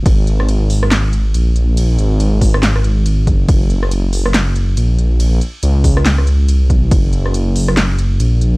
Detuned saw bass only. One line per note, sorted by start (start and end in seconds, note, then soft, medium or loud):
0.06 1.33 G#1 loud
1.34 1.97 A#1 loud
1.98 2.40 G#1 loud
2.41 2.83 G#1 medium
2.84 3.29 G#1 loud
3.29 3.47 G1 loud
3.49 4.76 F#1 medium
4.77 5.40 A#1 loud
5.63 6.53 C#2 medium
6.53 6.78 C2 medium
6.78 6.90 B1 medium
6.91 8.19 F#1 medium
8.20 8.57 A#1 loud